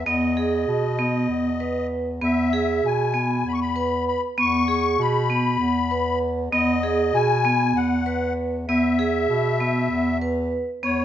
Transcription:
0, 0, Header, 1, 4, 480
1, 0, Start_track
1, 0, Key_signature, 4, "major"
1, 0, Tempo, 615385
1, 51, Time_signature, 7, 3, 24, 8
1, 8618, End_track
2, 0, Start_track
2, 0, Title_t, "Accordion"
2, 0, Program_c, 0, 21
2, 43, Note_on_c, 0, 75, 71
2, 1457, Note_off_c, 0, 75, 0
2, 1743, Note_on_c, 0, 76, 84
2, 2231, Note_on_c, 0, 80, 80
2, 2232, Note_off_c, 0, 76, 0
2, 2715, Note_off_c, 0, 80, 0
2, 2716, Note_on_c, 0, 83, 86
2, 2755, Note_off_c, 0, 83, 0
2, 2755, Note_on_c, 0, 85, 78
2, 2805, Note_off_c, 0, 85, 0
2, 2821, Note_on_c, 0, 83, 83
2, 3157, Note_off_c, 0, 83, 0
2, 3183, Note_on_c, 0, 83, 80
2, 3289, Note_off_c, 0, 83, 0
2, 3433, Note_on_c, 0, 85, 104
2, 3908, Note_on_c, 0, 83, 88
2, 3916, Note_off_c, 0, 85, 0
2, 4827, Note_off_c, 0, 83, 0
2, 5084, Note_on_c, 0, 75, 91
2, 5573, Note_on_c, 0, 80, 104
2, 5581, Note_off_c, 0, 75, 0
2, 6055, Note_on_c, 0, 78, 76
2, 6065, Note_off_c, 0, 80, 0
2, 6500, Note_off_c, 0, 78, 0
2, 6771, Note_on_c, 0, 76, 96
2, 7939, Note_off_c, 0, 76, 0
2, 8455, Note_on_c, 0, 73, 78
2, 8618, Note_off_c, 0, 73, 0
2, 8618, End_track
3, 0, Start_track
3, 0, Title_t, "Vibraphone"
3, 0, Program_c, 1, 11
3, 48, Note_on_c, 1, 59, 91
3, 232, Note_off_c, 1, 59, 0
3, 288, Note_on_c, 1, 68, 68
3, 655, Note_off_c, 1, 68, 0
3, 770, Note_on_c, 1, 59, 75
3, 1136, Note_off_c, 1, 59, 0
3, 1250, Note_on_c, 1, 71, 58
3, 1616, Note_off_c, 1, 71, 0
3, 1728, Note_on_c, 1, 59, 85
3, 1912, Note_off_c, 1, 59, 0
3, 1974, Note_on_c, 1, 68, 69
3, 2339, Note_off_c, 1, 68, 0
3, 2448, Note_on_c, 1, 59, 65
3, 2814, Note_off_c, 1, 59, 0
3, 2931, Note_on_c, 1, 71, 66
3, 3296, Note_off_c, 1, 71, 0
3, 3413, Note_on_c, 1, 59, 86
3, 3595, Note_off_c, 1, 59, 0
3, 3651, Note_on_c, 1, 68, 66
3, 4016, Note_off_c, 1, 68, 0
3, 4132, Note_on_c, 1, 59, 71
3, 4496, Note_off_c, 1, 59, 0
3, 4612, Note_on_c, 1, 71, 71
3, 4976, Note_off_c, 1, 71, 0
3, 5091, Note_on_c, 1, 59, 94
3, 5273, Note_off_c, 1, 59, 0
3, 5330, Note_on_c, 1, 68, 76
3, 5694, Note_off_c, 1, 68, 0
3, 5808, Note_on_c, 1, 59, 83
3, 6173, Note_off_c, 1, 59, 0
3, 6288, Note_on_c, 1, 71, 58
3, 6653, Note_off_c, 1, 71, 0
3, 6777, Note_on_c, 1, 59, 91
3, 6956, Note_off_c, 1, 59, 0
3, 7011, Note_on_c, 1, 68, 67
3, 7375, Note_off_c, 1, 68, 0
3, 7491, Note_on_c, 1, 59, 65
3, 7855, Note_off_c, 1, 59, 0
3, 7968, Note_on_c, 1, 71, 59
3, 8333, Note_off_c, 1, 71, 0
3, 8449, Note_on_c, 1, 59, 79
3, 8618, Note_off_c, 1, 59, 0
3, 8618, End_track
4, 0, Start_track
4, 0, Title_t, "Bass clarinet"
4, 0, Program_c, 2, 71
4, 44, Note_on_c, 2, 40, 88
4, 497, Note_off_c, 2, 40, 0
4, 530, Note_on_c, 2, 47, 92
4, 980, Note_off_c, 2, 47, 0
4, 1008, Note_on_c, 2, 40, 77
4, 1699, Note_off_c, 2, 40, 0
4, 1729, Note_on_c, 2, 40, 81
4, 2180, Note_off_c, 2, 40, 0
4, 2210, Note_on_c, 2, 47, 87
4, 2660, Note_off_c, 2, 47, 0
4, 2696, Note_on_c, 2, 40, 77
4, 3275, Note_off_c, 2, 40, 0
4, 3408, Note_on_c, 2, 40, 86
4, 3858, Note_off_c, 2, 40, 0
4, 3889, Note_on_c, 2, 47, 97
4, 4338, Note_off_c, 2, 47, 0
4, 4363, Note_on_c, 2, 40, 82
4, 5055, Note_off_c, 2, 40, 0
4, 5082, Note_on_c, 2, 40, 87
4, 5534, Note_off_c, 2, 40, 0
4, 5562, Note_on_c, 2, 47, 94
4, 6014, Note_off_c, 2, 47, 0
4, 6043, Note_on_c, 2, 40, 85
4, 6734, Note_off_c, 2, 40, 0
4, 6764, Note_on_c, 2, 40, 81
4, 7215, Note_off_c, 2, 40, 0
4, 7247, Note_on_c, 2, 47, 89
4, 7696, Note_off_c, 2, 47, 0
4, 7728, Note_on_c, 2, 40, 87
4, 8312, Note_off_c, 2, 40, 0
4, 8444, Note_on_c, 2, 40, 73
4, 8618, Note_off_c, 2, 40, 0
4, 8618, End_track
0, 0, End_of_file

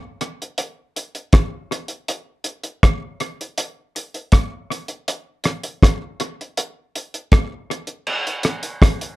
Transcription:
0, 0, Header, 1, 2, 480
1, 0, Start_track
1, 0, Tempo, 748130
1, 1335, Time_signature, 4, 2, 24, 8
1, 5878, End_track
2, 0, Start_track
2, 0, Title_t, "Drums"
2, 134, Note_on_c, 9, 42, 73
2, 198, Note_off_c, 9, 42, 0
2, 268, Note_on_c, 9, 42, 52
2, 333, Note_off_c, 9, 42, 0
2, 371, Note_on_c, 9, 42, 89
2, 435, Note_off_c, 9, 42, 0
2, 619, Note_on_c, 9, 42, 65
2, 683, Note_off_c, 9, 42, 0
2, 737, Note_on_c, 9, 42, 47
2, 801, Note_off_c, 9, 42, 0
2, 851, Note_on_c, 9, 42, 86
2, 853, Note_on_c, 9, 36, 114
2, 858, Note_on_c, 9, 37, 99
2, 915, Note_off_c, 9, 42, 0
2, 918, Note_off_c, 9, 36, 0
2, 922, Note_off_c, 9, 37, 0
2, 1103, Note_on_c, 9, 42, 70
2, 1167, Note_off_c, 9, 42, 0
2, 1208, Note_on_c, 9, 42, 58
2, 1272, Note_off_c, 9, 42, 0
2, 1337, Note_on_c, 9, 42, 87
2, 1401, Note_off_c, 9, 42, 0
2, 1567, Note_on_c, 9, 42, 69
2, 1631, Note_off_c, 9, 42, 0
2, 1691, Note_on_c, 9, 42, 58
2, 1755, Note_off_c, 9, 42, 0
2, 1816, Note_on_c, 9, 36, 109
2, 1817, Note_on_c, 9, 37, 123
2, 1822, Note_on_c, 9, 42, 93
2, 1880, Note_off_c, 9, 36, 0
2, 1881, Note_off_c, 9, 37, 0
2, 1886, Note_off_c, 9, 42, 0
2, 2054, Note_on_c, 9, 42, 70
2, 2119, Note_off_c, 9, 42, 0
2, 2187, Note_on_c, 9, 42, 54
2, 2251, Note_off_c, 9, 42, 0
2, 2294, Note_on_c, 9, 42, 90
2, 2358, Note_off_c, 9, 42, 0
2, 2540, Note_on_c, 9, 42, 66
2, 2605, Note_off_c, 9, 42, 0
2, 2658, Note_on_c, 9, 42, 47
2, 2723, Note_off_c, 9, 42, 0
2, 2771, Note_on_c, 9, 42, 90
2, 2776, Note_on_c, 9, 36, 106
2, 2778, Note_on_c, 9, 37, 101
2, 2835, Note_off_c, 9, 42, 0
2, 2840, Note_off_c, 9, 36, 0
2, 2842, Note_off_c, 9, 37, 0
2, 3026, Note_on_c, 9, 42, 68
2, 3091, Note_off_c, 9, 42, 0
2, 3133, Note_on_c, 9, 42, 59
2, 3197, Note_off_c, 9, 42, 0
2, 3259, Note_on_c, 9, 42, 93
2, 3323, Note_off_c, 9, 42, 0
2, 3489, Note_on_c, 9, 42, 76
2, 3500, Note_on_c, 9, 37, 69
2, 3553, Note_off_c, 9, 42, 0
2, 3564, Note_off_c, 9, 37, 0
2, 3615, Note_on_c, 9, 42, 56
2, 3679, Note_off_c, 9, 42, 0
2, 3738, Note_on_c, 9, 36, 108
2, 3742, Note_on_c, 9, 37, 118
2, 3746, Note_on_c, 9, 42, 99
2, 3802, Note_off_c, 9, 36, 0
2, 3806, Note_off_c, 9, 37, 0
2, 3811, Note_off_c, 9, 42, 0
2, 3977, Note_on_c, 9, 42, 74
2, 4041, Note_off_c, 9, 42, 0
2, 4112, Note_on_c, 9, 42, 47
2, 4176, Note_off_c, 9, 42, 0
2, 4218, Note_on_c, 9, 42, 95
2, 4282, Note_off_c, 9, 42, 0
2, 4462, Note_on_c, 9, 42, 64
2, 4526, Note_off_c, 9, 42, 0
2, 4582, Note_on_c, 9, 42, 48
2, 4646, Note_off_c, 9, 42, 0
2, 4695, Note_on_c, 9, 42, 83
2, 4696, Note_on_c, 9, 36, 112
2, 4702, Note_on_c, 9, 37, 98
2, 4759, Note_off_c, 9, 42, 0
2, 4760, Note_off_c, 9, 36, 0
2, 4766, Note_off_c, 9, 37, 0
2, 4949, Note_on_c, 9, 42, 73
2, 5013, Note_off_c, 9, 42, 0
2, 5050, Note_on_c, 9, 42, 55
2, 5114, Note_off_c, 9, 42, 0
2, 5175, Note_on_c, 9, 49, 99
2, 5239, Note_off_c, 9, 49, 0
2, 5305, Note_on_c, 9, 42, 58
2, 5369, Note_off_c, 9, 42, 0
2, 5410, Note_on_c, 9, 42, 80
2, 5421, Note_on_c, 9, 37, 67
2, 5475, Note_off_c, 9, 42, 0
2, 5485, Note_off_c, 9, 37, 0
2, 5536, Note_on_c, 9, 42, 58
2, 5600, Note_off_c, 9, 42, 0
2, 5657, Note_on_c, 9, 36, 119
2, 5660, Note_on_c, 9, 37, 127
2, 5665, Note_on_c, 9, 42, 95
2, 5721, Note_off_c, 9, 36, 0
2, 5725, Note_off_c, 9, 37, 0
2, 5730, Note_off_c, 9, 42, 0
2, 5783, Note_on_c, 9, 42, 66
2, 5847, Note_off_c, 9, 42, 0
2, 5878, End_track
0, 0, End_of_file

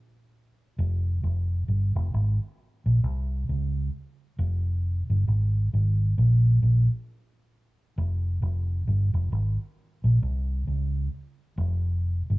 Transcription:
0, 0, Header, 1, 2, 480
1, 0, Start_track
1, 0, Key_signature, -4, "minor"
1, 0, Tempo, 899550
1, 418, Time_signature, 4, 2, 24, 8
1, 6609, End_track
2, 0, Start_track
2, 0, Title_t, "Fingered electric bass"
2, 0, Program_c, 0, 33
2, 420, Note_on_c, 0, 29, 101
2, 629, Note_off_c, 0, 29, 0
2, 660, Note_on_c, 0, 29, 82
2, 869, Note_off_c, 0, 29, 0
2, 898, Note_on_c, 0, 31, 83
2, 1023, Note_off_c, 0, 31, 0
2, 1044, Note_on_c, 0, 29, 88
2, 1128, Note_off_c, 0, 29, 0
2, 1142, Note_on_c, 0, 32, 85
2, 1265, Note_off_c, 0, 32, 0
2, 1526, Note_on_c, 0, 34, 84
2, 1609, Note_off_c, 0, 34, 0
2, 1622, Note_on_c, 0, 36, 83
2, 1830, Note_off_c, 0, 36, 0
2, 1864, Note_on_c, 0, 37, 78
2, 2071, Note_off_c, 0, 37, 0
2, 2340, Note_on_c, 0, 29, 101
2, 2674, Note_off_c, 0, 29, 0
2, 2720, Note_on_c, 0, 31, 72
2, 2806, Note_off_c, 0, 31, 0
2, 2817, Note_on_c, 0, 32, 78
2, 3027, Note_off_c, 0, 32, 0
2, 3060, Note_on_c, 0, 32, 82
2, 3269, Note_off_c, 0, 32, 0
2, 3296, Note_on_c, 0, 34, 93
2, 3507, Note_off_c, 0, 34, 0
2, 3534, Note_on_c, 0, 34, 72
2, 3660, Note_off_c, 0, 34, 0
2, 4256, Note_on_c, 0, 29, 100
2, 4467, Note_off_c, 0, 29, 0
2, 4493, Note_on_c, 0, 29, 84
2, 4705, Note_off_c, 0, 29, 0
2, 4735, Note_on_c, 0, 31, 86
2, 4861, Note_off_c, 0, 31, 0
2, 4876, Note_on_c, 0, 29, 78
2, 4963, Note_off_c, 0, 29, 0
2, 4976, Note_on_c, 0, 32, 88
2, 5101, Note_off_c, 0, 32, 0
2, 5358, Note_on_c, 0, 34, 85
2, 5444, Note_off_c, 0, 34, 0
2, 5456, Note_on_c, 0, 36, 89
2, 5667, Note_off_c, 0, 36, 0
2, 5696, Note_on_c, 0, 37, 81
2, 5907, Note_off_c, 0, 37, 0
2, 6178, Note_on_c, 0, 29, 112
2, 6513, Note_off_c, 0, 29, 0
2, 6563, Note_on_c, 0, 31, 83
2, 6609, Note_off_c, 0, 31, 0
2, 6609, End_track
0, 0, End_of_file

